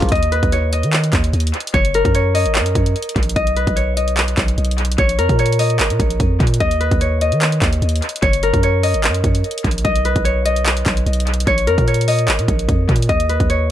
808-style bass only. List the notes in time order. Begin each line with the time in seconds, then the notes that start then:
0.02 A#1
0.12 D#2
0.43 D#2
0.83 D#3
1.13 D#2
1.33 D#2
1.74 F#1
2.05 F#2
2.46 G#1
2.60 F#2
2.75 F#2
3.16 A#1
3.36 B1
3.67 B1
4.37 B1
4.58 B1
4.98 A#1
5.19 F2
5.29 A#2
5.79 G#1
5.90 A#2
6.00 A#1
6.20 F2
6.40 A#2
6.61 D#2
6.91 D#2
7.32 D#3
7.62 D#2
7.82 D#2
8.23 F#1
8.54 F#2
8.94 G#1
9.09 F#2
9.24 F#2
9.64 A#1
9.85 B1
10.16 B1
10.86 B1
11.06 B1
11.47 A#1
11.67 F2
11.78 A#2
12.28 G#1
12.39 A#2
12.48 A#1
12.69 F2
12.89 A#2
13.09 D#2
13.40 D#2